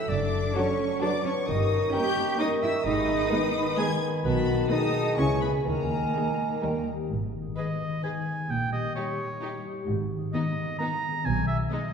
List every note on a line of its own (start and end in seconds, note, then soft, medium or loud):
0.00 0.12 D3 medium
0.00 0.54 F#3 soft
0.00 0.30 A3 soft
0.00 1.50 D4 soft
0.00 1.24 F#4 soft
0.00 1.02 A4 medium
0.00 0.10 E5 medium
0.09 0.45 F#1 medium
0.09 1.49 F#2 medium
0.09 0.54 D4 medium
0.09 0.56 D5 medium
0.09 0.56 D6 medium
0.32 0.77 A3 soft
0.54 0.90 F#3 medium
0.54 1.00 F#3 soft
0.54 0.72 F#3 soft
0.54 1.01 C#4 medium
0.54 0.90 D4 medium
0.54 0.89 F#4 medium
0.54 0.89 A4 medium
0.54 1.01 C#5 medium
0.54 0.63 A5 medium
0.54 1.03 C#6 medium
0.78 1.49 A3 soft
1.00 1.50 F#3 soft
1.00 1.36 F#3 medium
1.00 1.18 F#3 medium
1.00 1.09 D4 medium
1.00 1.36 D4 medium
1.00 1.35 F#4 medium
1.00 1.36 A4 medium
1.00 1.47 B4 medium
1.00 1.26 D5 medium
1.00 1.10 A5 medium
1.00 1.25 D6 medium
1.24 1.32 C#4 medium
1.24 1.50 F#4 medium
1.24 1.48 C#5 medium
1.24 1.48 C#6 medium
1.47 1.84 G1 medium
1.47 2.88 G2 medium
1.47 4.21 D#3 medium
1.47 1.93 D#4 medium
1.47 1.93 A#4 medium
1.47 1.92 D#5 medium
1.47 2.81 C#6 medium
1.47 1.94 D#6 medium
1.72 2.16 C#4 medium
1.93 2.39 G3 soft
1.93 2.28 A#3 medium
1.93 2.28 C#4 medium
1.93 2.28 D#4 medium
1.93 2.39 G4 medium
1.93 2.26 G4 medium
1.93 2.28 A#4 medium
1.93 2.38 G5 medium
1.93 2.39 G6 loud
2.17 2.88 C#4 medium
2.39 2.88 G3 soft
2.39 2.74 A#3 medium
2.39 2.74 C#4 medium
2.39 2.47 D#4 medium
2.39 2.74 D#4 medium
2.39 2.85 A#4 medium
2.39 2.74 A#4 medium
2.39 2.62 D#5 medium
2.39 2.47 D#6 medium
2.62 4.01 D#4 medium
2.62 2.71 E4 medium
2.62 2.85 E5 medium
2.62 2.85 E6 medium
2.85 3.22 G#1 medium
2.85 4.27 G#2 medium
2.85 3.76 D#4 medium
2.85 3.32 G#4 medium
2.85 3.49 D#5 medium
2.85 4.22 B5 medium
2.85 3.76 D#6 loud
3.09 3.54 B3 medium
3.31 3.77 D#3 soft
3.31 3.66 G#3 medium
3.31 3.66 B3 medium
3.31 3.66 D#4 medium
3.31 4.24 B4 medium
3.31 3.66 B4 medium
3.55 4.47 B3 medium
3.77 4.27 D#3 soft
3.77 4.12 G#3 medium
3.77 4.12 B3 medium
3.77 4.12 D#4 medium
3.77 3.86 G#4 medium
3.77 4.12 B4 medium
3.77 4.00 G#5 medium
3.77 4.02 G#6 loud
4.02 5.20 D#4 medium
4.24 4.61 B1 medium
4.24 5.20 B2 medium
4.24 4.68 D#3 medium
4.24 4.68 B3 medium
4.24 4.70 F#4 medium
4.24 4.68 B4 medium
4.24 4.68 A5 medium
4.24 4.68 B5 medium
4.49 4.93 B3 soft
4.70 5.20 D#3 medium
4.70 5.20 F#3 soft
4.70 5.06 A3 medium
4.70 5.06 B3 medium
4.70 5.05 D#4 medium
4.70 5.17 D#4 medium
4.70 5.66 G#4 medium
4.70 5.05 B4 medium
4.70 5.20 D#5 medium
4.70 5.17 A5 medium
4.70 5.17 D#6 medium
4.94 5.20 B3 soft
5.17 5.55 C#2 medium
5.17 5.68 C#3 soft
5.17 5.68 E3 medium
5.17 5.54 G#3 medium
5.17 5.26 C#4 medium
5.17 5.53 E4 medium
5.17 5.53 G#4 medium
5.17 5.41 C#5 medium
5.17 5.64 G#5 medium
5.17 5.41 C#6 medium
5.41 5.65 B3 medium
5.41 5.68 E4 soft
5.41 6.64 G#4 soft
5.41 5.53 B4 medium
5.41 5.49 B5 medium
5.65 6.04 D#2 medium
5.65 6.61 D#3 medium
5.65 6.62 D#3 soft
5.65 6.83 A#3 medium
5.65 6.86 A#4 medium
5.65 6.84 A#4 medium
5.65 6.60 G#5 soft
5.65 6.84 A#5 medium
5.90 6.37 D#4 soft
6.13 6.64 G#3 soft
6.13 6.50 G#3 soft
6.13 6.50 A#3 soft
6.13 6.50 D#4 soft
6.13 6.49 G#4 soft
6.38 6.85 D#4 soft
6.61 7.00 D#2 medium
6.61 6.73 D#3 soft
6.61 7.12 D#3 soft
6.61 6.98 G3 soft
6.61 6.98 A#3 soft
6.61 6.98 D#4 soft
6.61 6.97 A#4 soft
6.61 6.87 G5 soft
6.85 7.40 D#4 soft
6.85 7.12 G4 soft
7.10 7.47 G#1 medium
7.10 7.47 G#2 medium
7.10 8.51 G#2 soft
7.26 7.56 D#3 soft
7.41 8.01 D#4 soft
7.57 7.86 D#3 soft
7.57 7.66 G#4 soft
7.57 7.65 B4 soft
7.57 7.65 D#5 soft
7.57 8.00 D#5 medium
7.72 8.52 B3 soft
7.87 8.17 D#3 soft
8.03 8.79 D#4 soft
8.03 8.12 G#4 soft
8.03 8.11 B4 soft
8.03 8.12 D#5 soft
8.03 8.52 G#5 medium
8.18 8.51 D#3 soft
8.34 8.51 G#4 soft
8.49 8.86 A#1 medium
8.49 9.90 A#2 soft
8.49 8.86 A#2 medium
8.49 8.72 G5 medium
8.65 8.94 G3 soft
8.73 8.95 D#5 medium
8.80 9.40 D#4 soft
8.95 9.25 G3 soft
8.95 9.04 D#4 soft
8.95 9.04 G4 soft
8.95 9.63 C#5 medium
8.95 9.03 D#5 soft
9.11 9.89 A#3 soft
9.26 9.55 G3 soft
9.41 10.17 D#4 soft
9.41 9.50 D#4 soft
9.41 9.50 G4 soft
9.41 9.49 D#5 soft
9.56 9.89 G3 soft
9.72 9.89 G4 soft
9.87 10.24 G#1 medium
9.87 11.27 G#2 medium
9.87 10.24 G#2 medium
10.03 10.32 D#3 soft
10.18 10.78 D#4 soft
10.33 10.63 D#3 soft
10.33 10.41 B3 medium
10.33 10.42 D#4 soft
10.33 10.41 D#5 soft
10.33 10.77 D#5 medium
10.49 11.40 B3 soft
10.64 10.95 D#3 soft
10.79 10.87 B3 soft
10.79 11.55 D#4 soft
10.79 10.88 D#4 soft
10.79 10.87 D#5 medium
10.79 11.27 A#5 medium
10.96 11.28 D#3 soft
11.11 11.93 G#4 soft
11.25 11.62 B1 medium
11.25 11.61 B2 medium
11.25 11.93 B2 medium
11.25 11.47 G#5 medium
11.41 11.70 B3 soft
11.48 11.58 E5 medium
11.56 11.93 D#4 soft
11.69 11.79 G#3 medium
11.69 11.93 B3 soft
11.69 11.79 D#4 soft
11.69 11.77 D#5 medium
11.69 11.93 D#5 medium
11.87 11.93 G#3 soft